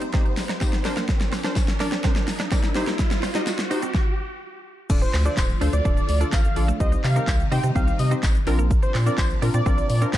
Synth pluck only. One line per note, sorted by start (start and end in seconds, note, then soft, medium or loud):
0.13 0.40 D#4 medium
0.13 0.40 G4 medium
0.13 0.41 C5 medium
0.61 0.85 D#4 medium
0.61 0.85 G4 medium
0.61 0.84 C5 loud
0.85 1.33 D4 medium
0.85 1.33 A#4 medium
0.85 1.33 C5 loud
1.44 1.65 D4 medium
1.44 1.65 A#4 medium
1.44 1.65 C5 loud
1.80 1.94 D4 medium
1.80 1.94 A#4 medium
1.80 1.94 D5 loud
2.04 2.31 D4 medium
2.04 2.31 A#4 medium
2.04 2.31 C5 loud
2.51 2.75 D4 medium
2.51 2.76 A#4 medium
2.51 2.76 D5 loud
2.75 3.23 D#4 medium
2.75 3.23 G4 medium
2.75 3.23 C5 loud
3.35 3.55 D#4 medium
3.35 3.55 G4 medium
3.35 3.55 D#5 loud
3.71 3.84 D#4 medium
3.71 3.84 G4 medium
3.71 3.84 C5 loud
4.90 5.10 D4 medium
4.90 5.10 F4 medium
4.90 5.10 A4 medium
4.90 5.10 D5 medium
5.25 5.45 D4 medium
5.25 5.46 F4 medium
5.25 5.46 A4 medium
5.25 5.46 C5 medium
5.61 5.74 D4 medium
5.61 5.75 F4 medium
5.61 5.75 A4 medium
5.61 5.75 C5 medium
5.85 6.05 D4 medium
5.85 6.05 F4 medium
5.85 6.05 A4 medium
5.85 6.05 D5 medium
6.21 6.41 D4 medium
6.21 6.41 F4 medium
6.21 6.41 A4 medium
6.21 6.41 D5 medium
6.56 6.70 D4 medium
6.56 6.70 F4 medium
6.56 6.70 A4 medium
6.56 6.70 D5 medium
6.80 7.00 C4 medium
6.80 7.00 D#4 medium
6.80 7.00 G4 medium
6.80 7.01 C5 medium
7.16 7.36 C4 medium
7.16 7.36 D#4 medium
7.16 7.36 G4 medium
7.16 7.36 A#4 medium
7.51 7.65 C4 medium
7.51 7.65 D#4 medium
7.51 7.65 G4 medium
7.51 7.65 C5 medium
7.75 7.96 C4 medium
7.75 7.96 D#4 medium
7.75 7.96 G4 medium
7.75 7.96 C5 medium
8.11 8.31 C4 medium
8.11 8.31 D#4 medium
8.11 8.31 G4 medium
8.11 8.31 C5 medium
8.47 8.94 C4 loud
8.47 8.95 D4 medium
8.47 8.95 F4 medium
8.47 8.95 A#4 loud
9.06 9.26 C4 medium
9.06 9.27 D4 medium
9.06 9.27 F4 medium
9.06 9.27 A#4 medium
9.42 9.55 C4 medium
9.42 9.56 D4 medium
9.42 9.56 F4 medium
9.42 9.56 A#4 medium
9.66 9.86 C4 medium
9.66 9.86 D4 medium
9.66 9.86 F4 medium
9.66 9.86 A#4 medium
10.02 10.18 C4 medium
10.02 10.18 D4 medium
10.02 10.18 F4 medium
10.02 10.18 A#4 medium